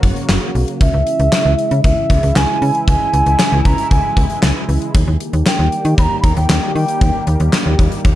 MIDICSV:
0, 0, Header, 1, 5, 480
1, 0, Start_track
1, 0, Tempo, 517241
1, 750, Time_signature, 4, 2, 24, 8
1, 7565, End_track
2, 0, Start_track
2, 0, Title_t, "Ocarina"
2, 0, Program_c, 0, 79
2, 751, Note_on_c, 0, 76, 101
2, 1673, Note_off_c, 0, 76, 0
2, 1709, Note_on_c, 0, 76, 97
2, 2188, Note_on_c, 0, 80, 101
2, 2202, Note_off_c, 0, 76, 0
2, 2664, Note_off_c, 0, 80, 0
2, 2670, Note_on_c, 0, 80, 118
2, 3391, Note_on_c, 0, 82, 114
2, 3405, Note_off_c, 0, 80, 0
2, 3624, Note_off_c, 0, 82, 0
2, 3630, Note_on_c, 0, 80, 105
2, 4076, Note_off_c, 0, 80, 0
2, 5073, Note_on_c, 0, 79, 101
2, 5518, Note_off_c, 0, 79, 0
2, 5550, Note_on_c, 0, 83, 107
2, 5584, Note_on_c, 0, 82, 116
2, 5593, Note_off_c, 0, 83, 0
2, 5745, Note_off_c, 0, 82, 0
2, 5759, Note_on_c, 0, 83, 80
2, 5789, Note_on_c, 0, 82, 103
2, 5803, Note_off_c, 0, 83, 0
2, 5903, Note_off_c, 0, 82, 0
2, 5908, Note_on_c, 0, 79, 97
2, 6244, Note_off_c, 0, 79, 0
2, 6270, Note_on_c, 0, 79, 95
2, 6716, Note_off_c, 0, 79, 0
2, 7565, End_track
3, 0, Start_track
3, 0, Title_t, "Analog synth pad"
3, 0, Program_c, 1, 89
3, 0, Note_on_c, 1, 49, 79
3, 0, Note_on_c, 1, 54, 72
3, 0, Note_on_c, 1, 58, 74
3, 0, Note_on_c, 1, 66, 92
3, 713, Note_off_c, 1, 54, 0
3, 713, Note_off_c, 1, 66, 0
3, 714, Note_off_c, 1, 58, 0
3, 751, Note_on_c, 1, 52, 73
3, 751, Note_on_c, 1, 56, 73
3, 751, Note_on_c, 1, 64, 88
3, 4553, Note_off_c, 1, 49, 0
3, 4553, Note_off_c, 1, 52, 0
3, 4553, Note_off_c, 1, 56, 0
3, 4553, Note_off_c, 1, 64, 0
3, 4591, Note_on_c, 1, 51, 80
3, 4591, Note_on_c, 1, 58, 73
3, 4591, Note_on_c, 1, 67, 85
3, 4592, Note_on_c, 1, 55, 72
3, 7565, Note_off_c, 1, 51, 0
3, 7565, Note_off_c, 1, 55, 0
3, 7565, Note_off_c, 1, 58, 0
3, 7565, Note_off_c, 1, 67, 0
3, 7565, End_track
4, 0, Start_track
4, 0, Title_t, "FM bass"
4, 0, Program_c, 2, 39
4, 28, Note_on_c, 2, 30, 102
4, 118, Note_off_c, 2, 30, 0
4, 270, Note_on_c, 2, 30, 103
4, 358, Note_off_c, 2, 30, 0
4, 511, Note_on_c, 2, 35, 91
4, 599, Note_off_c, 2, 35, 0
4, 750, Note_on_c, 2, 37, 108
4, 838, Note_off_c, 2, 37, 0
4, 870, Note_on_c, 2, 37, 97
4, 958, Note_off_c, 2, 37, 0
4, 1110, Note_on_c, 2, 37, 100
4, 1199, Note_off_c, 2, 37, 0
4, 1349, Note_on_c, 2, 37, 101
4, 1438, Note_off_c, 2, 37, 0
4, 1590, Note_on_c, 2, 49, 93
4, 1678, Note_off_c, 2, 49, 0
4, 1710, Note_on_c, 2, 37, 104
4, 1798, Note_off_c, 2, 37, 0
4, 1948, Note_on_c, 2, 37, 105
4, 2037, Note_off_c, 2, 37, 0
4, 2070, Note_on_c, 2, 37, 100
4, 2158, Note_off_c, 2, 37, 0
4, 2190, Note_on_c, 2, 37, 107
4, 2278, Note_off_c, 2, 37, 0
4, 2430, Note_on_c, 2, 49, 100
4, 2518, Note_off_c, 2, 49, 0
4, 2670, Note_on_c, 2, 37, 107
4, 2758, Note_off_c, 2, 37, 0
4, 2909, Note_on_c, 2, 37, 97
4, 2998, Note_off_c, 2, 37, 0
4, 3029, Note_on_c, 2, 37, 94
4, 3118, Note_off_c, 2, 37, 0
4, 3271, Note_on_c, 2, 37, 106
4, 3359, Note_off_c, 2, 37, 0
4, 3389, Note_on_c, 2, 37, 107
4, 3478, Note_off_c, 2, 37, 0
4, 3630, Note_on_c, 2, 37, 102
4, 3718, Note_off_c, 2, 37, 0
4, 3867, Note_on_c, 2, 37, 110
4, 3957, Note_off_c, 2, 37, 0
4, 4109, Note_on_c, 2, 37, 109
4, 4198, Note_off_c, 2, 37, 0
4, 4350, Note_on_c, 2, 37, 96
4, 4438, Note_off_c, 2, 37, 0
4, 4590, Note_on_c, 2, 39, 111
4, 4679, Note_off_c, 2, 39, 0
4, 4709, Note_on_c, 2, 39, 100
4, 4798, Note_off_c, 2, 39, 0
4, 4949, Note_on_c, 2, 39, 99
4, 5038, Note_off_c, 2, 39, 0
4, 5189, Note_on_c, 2, 39, 100
4, 5278, Note_off_c, 2, 39, 0
4, 5428, Note_on_c, 2, 51, 98
4, 5517, Note_off_c, 2, 51, 0
4, 5549, Note_on_c, 2, 39, 109
4, 5638, Note_off_c, 2, 39, 0
4, 5787, Note_on_c, 2, 39, 102
4, 5877, Note_off_c, 2, 39, 0
4, 5909, Note_on_c, 2, 39, 98
4, 5998, Note_off_c, 2, 39, 0
4, 6028, Note_on_c, 2, 39, 108
4, 6117, Note_off_c, 2, 39, 0
4, 6268, Note_on_c, 2, 51, 99
4, 6357, Note_off_c, 2, 51, 0
4, 6509, Note_on_c, 2, 39, 111
4, 6598, Note_off_c, 2, 39, 0
4, 6749, Note_on_c, 2, 39, 97
4, 6838, Note_off_c, 2, 39, 0
4, 6869, Note_on_c, 2, 39, 100
4, 6958, Note_off_c, 2, 39, 0
4, 7109, Note_on_c, 2, 39, 101
4, 7198, Note_off_c, 2, 39, 0
4, 7229, Note_on_c, 2, 39, 98
4, 7318, Note_off_c, 2, 39, 0
4, 7469, Note_on_c, 2, 39, 100
4, 7558, Note_off_c, 2, 39, 0
4, 7565, End_track
5, 0, Start_track
5, 0, Title_t, "Drums"
5, 29, Note_on_c, 9, 36, 94
5, 32, Note_on_c, 9, 42, 77
5, 121, Note_off_c, 9, 36, 0
5, 125, Note_off_c, 9, 42, 0
5, 150, Note_on_c, 9, 42, 50
5, 242, Note_off_c, 9, 42, 0
5, 269, Note_on_c, 9, 38, 119
5, 269, Note_on_c, 9, 39, 102
5, 271, Note_on_c, 9, 42, 78
5, 362, Note_off_c, 9, 38, 0
5, 362, Note_off_c, 9, 39, 0
5, 364, Note_off_c, 9, 42, 0
5, 513, Note_on_c, 9, 46, 67
5, 605, Note_off_c, 9, 46, 0
5, 630, Note_on_c, 9, 42, 58
5, 723, Note_off_c, 9, 42, 0
5, 750, Note_on_c, 9, 36, 122
5, 751, Note_on_c, 9, 42, 78
5, 843, Note_off_c, 9, 36, 0
5, 844, Note_off_c, 9, 42, 0
5, 989, Note_on_c, 9, 42, 81
5, 1082, Note_off_c, 9, 42, 0
5, 1109, Note_on_c, 9, 42, 56
5, 1201, Note_off_c, 9, 42, 0
5, 1229, Note_on_c, 9, 38, 117
5, 1229, Note_on_c, 9, 39, 94
5, 1229, Note_on_c, 9, 42, 82
5, 1321, Note_off_c, 9, 38, 0
5, 1321, Note_off_c, 9, 39, 0
5, 1322, Note_off_c, 9, 42, 0
5, 1471, Note_on_c, 9, 42, 59
5, 1564, Note_off_c, 9, 42, 0
5, 1588, Note_on_c, 9, 42, 56
5, 1681, Note_off_c, 9, 42, 0
5, 1709, Note_on_c, 9, 42, 69
5, 1710, Note_on_c, 9, 36, 102
5, 1802, Note_off_c, 9, 42, 0
5, 1803, Note_off_c, 9, 36, 0
5, 1948, Note_on_c, 9, 36, 94
5, 1952, Note_on_c, 9, 42, 77
5, 2041, Note_off_c, 9, 36, 0
5, 2045, Note_off_c, 9, 42, 0
5, 2069, Note_on_c, 9, 42, 49
5, 2162, Note_off_c, 9, 42, 0
5, 2189, Note_on_c, 9, 38, 123
5, 2189, Note_on_c, 9, 39, 101
5, 2190, Note_on_c, 9, 42, 83
5, 2282, Note_off_c, 9, 38, 0
5, 2282, Note_off_c, 9, 39, 0
5, 2283, Note_off_c, 9, 42, 0
5, 2431, Note_on_c, 9, 46, 68
5, 2524, Note_off_c, 9, 46, 0
5, 2549, Note_on_c, 9, 42, 60
5, 2642, Note_off_c, 9, 42, 0
5, 2670, Note_on_c, 9, 36, 117
5, 2670, Note_on_c, 9, 42, 83
5, 2762, Note_off_c, 9, 36, 0
5, 2763, Note_off_c, 9, 42, 0
5, 2909, Note_on_c, 9, 42, 80
5, 3002, Note_off_c, 9, 42, 0
5, 3028, Note_on_c, 9, 42, 56
5, 3121, Note_off_c, 9, 42, 0
5, 3149, Note_on_c, 9, 38, 121
5, 3149, Note_on_c, 9, 39, 95
5, 3149, Note_on_c, 9, 42, 83
5, 3242, Note_off_c, 9, 38, 0
5, 3242, Note_off_c, 9, 39, 0
5, 3242, Note_off_c, 9, 42, 0
5, 3389, Note_on_c, 9, 36, 94
5, 3390, Note_on_c, 9, 42, 59
5, 3482, Note_off_c, 9, 36, 0
5, 3483, Note_off_c, 9, 42, 0
5, 3508, Note_on_c, 9, 42, 58
5, 3601, Note_off_c, 9, 42, 0
5, 3628, Note_on_c, 9, 42, 71
5, 3630, Note_on_c, 9, 36, 100
5, 3721, Note_off_c, 9, 42, 0
5, 3722, Note_off_c, 9, 36, 0
5, 3867, Note_on_c, 9, 36, 92
5, 3870, Note_on_c, 9, 42, 77
5, 3960, Note_off_c, 9, 36, 0
5, 3963, Note_off_c, 9, 42, 0
5, 3987, Note_on_c, 9, 42, 49
5, 4080, Note_off_c, 9, 42, 0
5, 4107, Note_on_c, 9, 38, 124
5, 4107, Note_on_c, 9, 39, 106
5, 4108, Note_on_c, 9, 42, 80
5, 4199, Note_off_c, 9, 38, 0
5, 4199, Note_off_c, 9, 39, 0
5, 4201, Note_off_c, 9, 42, 0
5, 4350, Note_on_c, 9, 46, 67
5, 4443, Note_off_c, 9, 46, 0
5, 4470, Note_on_c, 9, 42, 57
5, 4562, Note_off_c, 9, 42, 0
5, 4590, Note_on_c, 9, 36, 117
5, 4590, Note_on_c, 9, 42, 83
5, 4683, Note_off_c, 9, 36, 0
5, 4683, Note_off_c, 9, 42, 0
5, 4830, Note_on_c, 9, 42, 81
5, 4923, Note_off_c, 9, 42, 0
5, 4949, Note_on_c, 9, 42, 54
5, 5042, Note_off_c, 9, 42, 0
5, 5069, Note_on_c, 9, 38, 121
5, 5069, Note_on_c, 9, 39, 98
5, 5069, Note_on_c, 9, 42, 84
5, 5162, Note_off_c, 9, 38, 0
5, 5162, Note_off_c, 9, 39, 0
5, 5162, Note_off_c, 9, 42, 0
5, 5311, Note_on_c, 9, 42, 58
5, 5404, Note_off_c, 9, 42, 0
5, 5427, Note_on_c, 9, 42, 57
5, 5520, Note_off_c, 9, 42, 0
5, 5548, Note_on_c, 9, 42, 71
5, 5549, Note_on_c, 9, 36, 103
5, 5640, Note_off_c, 9, 42, 0
5, 5642, Note_off_c, 9, 36, 0
5, 5787, Note_on_c, 9, 36, 97
5, 5790, Note_on_c, 9, 42, 78
5, 5880, Note_off_c, 9, 36, 0
5, 5883, Note_off_c, 9, 42, 0
5, 5907, Note_on_c, 9, 42, 50
5, 6000, Note_off_c, 9, 42, 0
5, 6027, Note_on_c, 9, 38, 123
5, 6027, Note_on_c, 9, 39, 104
5, 6028, Note_on_c, 9, 42, 80
5, 6120, Note_off_c, 9, 38, 0
5, 6120, Note_off_c, 9, 39, 0
5, 6121, Note_off_c, 9, 42, 0
5, 6269, Note_on_c, 9, 46, 68
5, 6362, Note_off_c, 9, 46, 0
5, 6388, Note_on_c, 9, 42, 60
5, 6480, Note_off_c, 9, 42, 0
5, 6508, Note_on_c, 9, 42, 82
5, 6509, Note_on_c, 9, 36, 123
5, 6600, Note_off_c, 9, 42, 0
5, 6601, Note_off_c, 9, 36, 0
5, 6746, Note_on_c, 9, 42, 81
5, 6839, Note_off_c, 9, 42, 0
5, 6866, Note_on_c, 9, 42, 57
5, 6959, Note_off_c, 9, 42, 0
5, 6986, Note_on_c, 9, 38, 117
5, 6986, Note_on_c, 9, 39, 99
5, 6987, Note_on_c, 9, 42, 84
5, 7079, Note_off_c, 9, 38, 0
5, 7079, Note_off_c, 9, 39, 0
5, 7080, Note_off_c, 9, 42, 0
5, 7229, Note_on_c, 9, 36, 94
5, 7229, Note_on_c, 9, 42, 60
5, 7321, Note_off_c, 9, 36, 0
5, 7322, Note_off_c, 9, 42, 0
5, 7347, Note_on_c, 9, 42, 55
5, 7439, Note_off_c, 9, 42, 0
5, 7467, Note_on_c, 9, 42, 70
5, 7469, Note_on_c, 9, 36, 100
5, 7560, Note_off_c, 9, 42, 0
5, 7562, Note_off_c, 9, 36, 0
5, 7565, End_track
0, 0, End_of_file